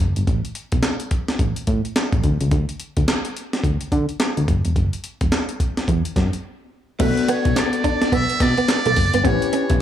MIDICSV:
0, 0, Header, 1, 7, 480
1, 0, Start_track
1, 0, Key_signature, 2, "minor"
1, 0, Tempo, 560748
1, 235, Time_signature, 4, 2, 24, 8
1, 8402, End_track
2, 0, Start_track
2, 0, Title_t, "Muted trumpet"
2, 0, Program_c, 0, 59
2, 5997, Note_on_c, 0, 71, 93
2, 6246, Note_on_c, 0, 73, 89
2, 6259, Note_off_c, 0, 71, 0
2, 6489, Note_on_c, 0, 74, 98
2, 6502, Note_off_c, 0, 73, 0
2, 6966, Note_on_c, 0, 76, 110
2, 6979, Note_off_c, 0, 74, 0
2, 7208, Note_on_c, 0, 74, 110
2, 7221, Note_off_c, 0, 76, 0
2, 7927, Note_on_c, 0, 73, 93
2, 7940, Note_off_c, 0, 74, 0
2, 8401, Note_off_c, 0, 73, 0
2, 8402, End_track
3, 0, Start_track
3, 0, Title_t, "Grand piano"
3, 0, Program_c, 1, 0
3, 5982, Note_on_c, 1, 59, 64
3, 5989, Note_on_c, 1, 62, 60
3, 5995, Note_on_c, 1, 66, 61
3, 6004, Note_on_c, 1, 69, 74
3, 6153, Control_c, 1, 64, 127
3, 7874, Note_off_c, 1, 59, 0
3, 7878, Note_off_c, 1, 62, 0
3, 7881, Note_off_c, 1, 66, 0
3, 7885, Note_off_c, 1, 69, 0
3, 7906, Note_on_c, 1, 61, 66
3, 7914, Note_on_c, 1, 64, 63
3, 7919, Note_on_c, 1, 67, 62
3, 7926, Control_c, 1, 64, 0
3, 7927, Note_on_c, 1, 71, 75
3, 8048, Control_c, 1, 64, 127
3, 8402, Note_off_c, 1, 61, 0
3, 8402, Note_off_c, 1, 64, 0
3, 8402, Note_off_c, 1, 67, 0
3, 8402, Note_off_c, 1, 71, 0
3, 8402, End_track
4, 0, Start_track
4, 0, Title_t, "Clean electric guitar"
4, 0, Program_c, 2, 27
4, 5991, Note_on_c, 2, 57, 87
4, 6072, Note_off_c, 2, 57, 0
4, 6236, Note_on_c, 2, 59, 84
4, 6316, Note_off_c, 2, 59, 0
4, 6713, Note_on_c, 2, 62, 77
4, 6793, Note_off_c, 2, 62, 0
4, 6860, Note_on_c, 2, 62, 71
4, 6912, Note_off_c, 2, 62, 0
4, 6953, Note_on_c, 2, 59, 88
4, 7033, Note_off_c, 2, 59, 0
4, 7342, Note_on_c, 2, 59, 65
4, 7393, Note_off_c, 2, 59, 0
4, 7584, Note_on_c, 2, 57, 82
4, 7635, Note_off_c, 2, 57, 0
4, 7825, Note_on_c, 2, 59, 74
4, 7876, Note_off_c, 2, 59, 0
4, 7922, Note_on_c, 2, 59, 86
4, 8000, Note_off_c, 2, 59, 0
4, 8158, Note_on_c, 2, 61, 78
4, 8237, Note_off_c, 2, 61, 0
4, 8402, End_track
5, 0, Start_track
5, 0, Title_t, "FM bass"
5, 0, Program_c, 3, 39
5, 0, Note_on_c, 3, 30, 84
5, 117, Note_off_c, 3, 30, 0
5, 145, Note_on_c, 3, 31, 77
5, 222, Note_off_c, 3, 31, 0
5, 235, Note_on_c, 3, 33, 101
5, 357, Note_off_c, 3, 33, 0
5, 622, Note_on_c, 3, 35, 77
5, 700, Note_off_c, 3, 35, 0
5, 1194, Note_on_c, 3, 33, 87
5, 1316, Note_off_c, 3, 33, 0
5, 1435, Note_on_c, 3, 45, 89
5, 1556, Note_off_c, 3, 45, 0
5, 1820, Note_on_c, 3, 33, 94
5, 1900, Note_off_c, 3, 33, 0
5, 1918, Note_on_c, 3, 38, 98
5, 2038, Note_off_c, 3, 38, 0
5, 2062, Note_on_c, 3, 37, 89
5, 2141, Note_off_c, 3, 37, 0
5, 2154, Note_on_c, 3, 38, 100
5, 2276, Note_off_c, 3, 38, 0
5, 2544, Note_on_c, 3, 38, 85
5, 2622, Note_off_c, 3, 38, 0
5, 3113, Note_on_c, 3, 38, 84
5, 3235, Note_off_c, 3, 38, 0
5, 3356, Note_on_c, 3, 50, 105
5, 3477, Note_off_c, 3, 50, 0
5, 3745, Note_on_c, 3, 38, 90
5, 3822, Note_off_c, 3, 38, 0
5, 3839, Note_on_c, 3, 30, 101
5, 3959, Note_off_c, 3, 30, 0
5, 3985, Note_on_c, 3, 28, 90
5, 4062, Note_off_c, 3, 28, 0
5, 4076, Note_on_c, 3, 30, 92
5, 4197, Note_off_c, 3, 30, 0
5, 4464, Note_on_c, 3, 28, 81
5, 4542, Note_off_c, 3, 28, 0
5, 5036, Note_on_c, 3, 40, 93
5, 5157, Note_off_c, 3, 40, 0
5, 5277, Note_on_c, 3, 42, 88
5, 5397, Note_off_c, 3, 42, 0
5, 5994, Note_on_c, 3, 35, 115
5, 6116, Note_off_c, 3, 35, 0
5, 6382, Note_on_c, 3, 35, 84
5, 6461, Note_off_c, 3, 35, 0
5, 6954, Note_on_c, 3, 35, 92
5, 7076, Note_off_c, 3, 35, 0
5, 7196, Note_on_c, 3, 47, 95
5, 7317, Note_off_c, 3, 47, 0
5, 7584, Note_on_c, 3, 35, 89
5, 7662, Note_off_c, 3, 35, 0
5, 7678, Note_on_c, 3, 30, 93
5, 7798, Note_off_c, 3, 30, 0
5, 7823, Note_on_c, 3, 31, 81
5, 7901, Note_off_c, 3, 31, 0
5, 7918, Note_on_c, 3, 33, 106
5, 8038, Note_off_c, 3, 33, 0
5, 8307, Note_on_c, 3, 35, 83
5, 8384, Note_off_c, 3, 35, 0
5, 8402, End_track
6, 0, Start_track
6, 0, Title_t, "Muted clean electric guitar strokes"
6, 6378, Note_on_c, 9, 29, 46
6, 6464, Note_off_c, 9, 29, 0
6, 6475, Note_on_c, 9, 29, 48
6, 6560, Note_off_c, 9, 29, 0
6, 7193, Note_on_c, 9, 29, 51
6, 7279, Note_off_c, 9, 29, 0
6, 7678, Note_on_c, 9, 29, 45
6, 7764, Note_off_c, 9, 29, 0
6, 8305, Note_on_c, 9, 29, 49
6, 8391, Note_off_c, 9, 29, 0
6, 8402, End_track
7, 0, Start_track
7, 0, Title_t, "Drums"
7, 139, Note_on_c, 9, 42, 63
7, 225, Note_off_c, 9, 42, 0
7, 234, Note_on_c, 9, 36, 108
7, 236, Note_on_c, 9, 42, 66
7, 320, Note_off_c, 9, 36, 0
7, 322, Note_off_c, 9, 42, 0
7, 383, Note_on_c, 9, 42, 51
7, 468, Note_off_c, 9, 42, 0
7, 472, Note_on_c, 9, 42, 81
7, 558, Note_off_c, 9, 42, 0
7, 614, Note_on_c, 9, 42, 50
7, 620, Note_on_c, 9, 36, 95
7, 700, Note_off_c, 9, 42, 0
7, 706, Note_off_c, 9, 36, 0
7, 707, Note_on_c, 9, 38, 113
7, 708, Note_on_c, 9, 42, 68
7, 714, Note_on_c, 9, 39, 93
7, 793, Note_off_c, 9, 38, 0
7, 793, Note_off_c, 9, 42, 0
7, 799, Note_off_c, 9, 39, 0
7, 854, Note_on_c, 9, 42, 54
7, 939, Note_off_c, 9, 42, 0
7, 950, Note_on_c, 9, 42, 67
7, 952, Note_on_c, 9, 36, 84
7, 1035, Note_off_c, 9, 42, 0
7, 1038, Note_off_c, 9, 36, 0
7, 1100, Note_on_c, 9, 38, 66
7, 1100, Note_on_c, 9, 42, 46
7, 1185, Note_off_c, 9, 38, 0
7, 1185, Note_off_c, 9, 42, 0
7, 1192, Note_on_c, 9, 36, 83
7, 1194, Note_on_c, 9, 42, 64
7, 1277, Note_off_c, 9, 36, 0
7, 1280, Note_off_c, 9, 42, 0
7, 1338, Note_on_c, 9, 42, 61
7, 1424, Note_off_c, 9, 42, 0
7, 1430, Note_on_c, 9, 42, 71
7, 1433, Note_on_c, 9, 36, 91
7, 1516, Note_off_c, 9, 42, 0
7, 1519, Note_off_c, 9, 36, 0
7, 1583, Note_on_c, 9, 42, 46
7, 1669, Note_off_c, 9, 42, 0
7, 1676, Note_on_c, 9, 42, 80
7, 1677, Note_on_c, 9, 38, 108
7, 1683, Note_on_c, 9, 39, 85
7, 1761, Note_off_c, 9, 42, 0
7, 1762, Note_off_c, 9, 38, 0
7, 1769, Note_off_c, 9, 39, 0
7, 1819, Note_on_c, 9, 36, 102
7, 1820, Note_on_c, 9, 42, 43
7, 1905, Note_off_c, 9, 36, 0
7, 1905, Note_off_c, 9, 42, 0
7, 1914, Note_on_c, 9, 36, 90
7, 1914, Note_on_c, 9, 42, 70
7, 1999, Note_off_c, 9, 42, 0
7, 2000, Note_off_c, 9, 36, 0
7, 2059, Note_on_c, 9, 42, 64
7, 2145, Note_off_c, 9, 42, 0
7, 2152, Note_on_c, 9, 42, 62
7, 2153, Note_on_c, 9, 36, 103
7, 2237, Note_off_c, 9, 42, 0
7, 2239, Note_off_c, 9, 36, 0
7, 2301, Note_on_c, 9, 42, 53
7, 2387, Note_off_c, 9, 42, 0
7, 2393, Note_on_c, 9, 42, 80
7, 2479, Note_off_c, 9, 42, 0
7, 2539, Note_on_c, 9, 42, 56
7, 2542, Note_on_c, 9, 36, 100
7, 2625, Note_off_c, 9, 42, 0
7, 2627, Note_off_c, 9, 36, 0
7, 2636, Note_on_c, 9, 38, 112
7, 2637, Note_on_c, 9, 42, 70
7, 2643, Note_on_c, 9, 39, 95
7, 2722, Note_off_c, 9, 38, 0
7, 2722, Note_off_c, 9, 42, 0
7, 2728, Note_off_c, 9, 39, 0
7, 2780, Note_on_c, 9, 42, 54
7, 2865, Note_off_c, 9, 42, 0
7, 2881, Note_on_c, 9, 42, 65
7, 2966, Note_off_c, 9, 42, 0
7, 3025, Note_on_c, 9, 38, 65
7, 3025, Note_on_c, 9, 42, 49
7, 3110, Note_off_c, 9, 38, 0
7, 3111, Note_off_c, 9, 42, 0
7, 3112, Note_on_c, 9, 36, 86
7, 3117, Note_on_c, 9, 42, 69
7, 3198, Note_off_c, 9, 36, 0
7, 3203, Note_off_c, 9, 42, 0
7, 3258, Note_on_c, 9, 42, 59
7, 3344, Note_off_c, 9, 42, 0
7, 3354, Note_on_c, 9, 36, 90
7, 3355, Note_on_c, 9, 42, 72
7, 3439, Note_off_c, 9, 36, 0
7, 3441, Note_off_c, 9, 42, 0
7, 3499, Note_on_c, 9, 42, 48
7, 3584, Note_off_c, 9, 42, 0
7, 3592, Note_on_c, 9, 42, 81
7, 3593, Note_on_c, 9, 38, 105
7, 3600, Note_on_c, 9, 39, 87
7, 3678, Note_off_c, 9, 42, 0
7, 3679, Note_off_c, 9, 38, 0
7, 3686, Note_off_c, 9, 39, 0
7, 3743, Note_on_c, 9, 42, 45
7, 3828, Note_off_c, 9, 42, 0
7, 3836, Note_on_c, 9, 36, 96
7, 3837, Note_on_c, 9, 42, 72
7, 3921, Note_off_c, 9, 36, 0
7, 3923, Note_off_c, 9, 42, 0
7, 3978, Note_on_c, 9, 42, 60
7, 4063, Note_off_c, 9, 42, 0
7, 4074, Note_on_c, 9, 36, 97
7, 4076, Note_on_c, 9, 42, 60
7, 4159, Note_off_c, 9, 36, 0
7, 4162, Note_off_c, 9, 42, 0
7, 4221, Note_on_c, 9, 42, 56
7, 4307, Note_off_c, 9, 42, 0
7, 4312, Note_on_c, 9, 42, 75
7, 4397, Note_off_c, 9, 42, 0
7, 4459, Note_on_c, 9, 42, 53
7, 4461, Note_on_c, 9, 36, 96
7, 4545, Note_off_c, 9, 42, 0
7, 4547, Note_off_c, 9, 36, 0
7, 4553, Note_on_c, 9, 38, 111
7, 4554, Note_on_c, 9, 42, 65
7, 4560, Note_on_c, 9, 39, 87
7, 4639, Note_off_c, 9, 38, 0
7, 4640, Note_off_c, 9, 42, 0
7, 4646, Note_off_c, 9, 39, 0
7, 4697, Note_on_c, 9, 42, 51
7, 4783, Note_off_c, 9, 42, 0
7, 4793, Note_on_c, 9, 36, 87
7, 4795, Note_on_c, 9, 42, 73
7, 4879, Note_off_c, 9, 36, 0
7, 4881, Note_off_c, 9, 42, 0
7, 4942, Note_on_c, 9, 38, 59
7, 4942, Note_on_c, 9, 42, 48
7, 5028, Note_off_c, 9, 38, 0
7, 5028, Note_off_c, 9, 42, 0
7, 5033, Note_on_c, 9, 36, 81
7, 5038, Note_on_c, 9, 42, 70
7, 5118, Note_off_c, 9, 36, 0
7, 5124, Note_off_c, 9, 42, 0
7, 5181, Note_on_c, 9, 42, 62
7, 5266, Note_off_c, 9, 42, 0
7, 5274, Note_on_c, 9, 36, 89
7, 5275, Note_on_c, 9, 42, 69
7, 5277, Note_on_c, 9, 38, 62
7, 5359, Note_off_c, 9, 36, 0
7, 5361, Note_off_c, 9, 42, 0
7, 5363, Note_off_c, 9, 38, 0
7, 5421, Note_on_c, 9, 42, 46
7, 5506, Note_off_c, 9, 42, 0
7, 5990, Note_on_c, 9, 42, 74
7, 5990, Note_on_c, 9, 49, 98
7, 5990, Note_on_c, 9, 54, 64
7, 5992, Note_on_c, 9, 36, 116
7, 5992, Note_on_c, 9, 56, 81
7, 6075, Note_off_c, 9, 54, 0
7, 6076, Note_off_c, 9, 42, 0
7, 6076, Note_off_c, 9, 49, 0
7, 6077, Note_off_c, 9, 36, 0
7, 6078, Note_off_c, 9, 56, 0
7, 6141, Note_on_c, 9, 42, 57
7, 6226, Note_off_c, 9, 42, 0
7, 6235, Note_on_c, 9, 42, 84
7, 6321, Note_off_c, 9, 42, 0
7, 6379, Note_on_c, 9, 42, 59
7, 6381, Note_on_c, 9, 36, 108
7, 6465, Note_off_c, 9, 42, 0
7, 6467, Note_off_c, 9, 36, 0
7, 6473, Note_on_c, 9, 38, 122
7, 6474, Note_on_c, 9, 42, 72
7, 6474, Note_on_c, 9, 54, 101
7, 6475, Note_on_c, 9, 56, 67
7, 6480, Note_on_c, 9, 39, 97
7, 6559, Note_off_c, 9, 38, 0
7, 6559, Note_off_c, 9, 54, 0
7, 6560, Note_off_c, 9, 42, 0
7, 6561, Note_off_c, 9, 56, 0
7, 6566, Note_off_c, 9, 39, 0
7, 6616, Note_on_c, 9, 42, 55
7, 6702, Note_off_c, 9, 42, 0
7, 6713, Note_on_c, 9, 54, 72
7, 6714, Note_on_c, 9, 36, 90
7, 6715, Note_on_c, 9, 42, 74
7, 6799, Note_off_c, 9, 54, 0
7, 6800, Note_off_c, 9, 36, 0
7, 6801, Note_off_c, 9, 42, 0
7, 6862, Note_on_c, 9, 38, 68
7, 6862, Note_on_c, 9, 42, 57
7, 6947, Note_off_c, 9, 38, 0
7, 6948, Note_off_c, 9, 42, 0
7, 6953, Note_on_c, 9, 36, 89
7, 6956, Note_on_c, 9, 54, 73
7, 6956, Note_on_c, 9, 56, 62
7, 6957, Note_on_c, 9, 42, 77
7, 7038, Note_off_c, 9, 36, 0
7, 7041, Note_off_c, 9, 56, 0
7, 7042, Note_off_c, 9, 42, 0
7, 7042, Note_off_c, 9, 54, 0
7, 7101, Note_on_c, 9, 42, 65
7, 7186, Note_off_c, 9, 42, 0
7, 7193, Note_on_c, 9, 36, 104
7, 7193, Note_on_c, 9, 42, 75
7, 7195, Note_on_c, 9, 38, 74
7, 7197, Note_on_c, 9, 54, 68
7, 7279, Note_off_c, 9, 36, 0
7, 7279, Note_off_c, 9, 42, 0
7, 7280, Note_off_c, 9, 38, 0
7, 7283, Note_off_c, 9, 54, 0
7, 7340, Note_on_c, 9, 42, 49
7, 7426, Note_off_c, 9, 42, 0
7, 7433, Note_on_c, 9, 56, 77
7, 7434, Note_on_c, 9, 42, 87
7, 7435, Note_on_c, 9, 38, 125
7, 7435, Note_on_c, 9, 54, 90
7, 7441, Note_on_c, 9, 39, 93
7, 7519, Note_off_c, 9, 42, 0
7, 7519, Note_off_c, 9, 56, 0
7, 7520, Note_off_c, 9, 38, 0
7, 7521, Note_off_c, 9, 54, 0
7, 7527, Note_off_c, 9, 39, 0
7, 7580, Note_on_c, 9, 42, 51
7, 7665, Note_off_c, 9, 42, 0
7, 7672, Note_on_c, 9, 54, 72
7, 7673, Note_on_c, 9, 46, 74
7, 7675, Note_on_c, 9, 36, 95
7, 7758, Note_off_c, 9, 54, 0
7, 7759, Note_off_c, 9, 46, 0
7, 7761, Note_off_c, 9, 36, 0
7, 7819, Note_on_c, 9, 42, 66
7, 7905, Note_off_c, 9, 42, 0
7, 7913, Note_on_c, 9, 56, 80
7, 7915, Note_on_c, 9, 36, 106
7, 7917, Note_on_c, 9, 42, 69
7, 7917, Note_on_c, 9, 54, 67
7, 7999, Note_off_c, 9, 56, 0
7, 8001, Note_off_c, 9, 36, 0
7, 8002, Note_off_c, 9, 54, 0
7, 8003, Note_off_c, 9, 42, 0
7, 8064, Note_on_c, 9, 42, 56
7, 8150, Note_off_c, 9, 42, 0
7, 8156, Note_on_c, 9, 42, 82
7, 8242, Note_off_c, 9, 42, 0
7, 8300, Note_on_c, 9, 42, 59
7, 8303, Note_on_c, 9, 36, 112
7, 8385, Note_off_c, 9, 42, 0
7, 8389, Note_off_c, 9, 36, 0
7, 8402, End_track
0, 0, End_of_file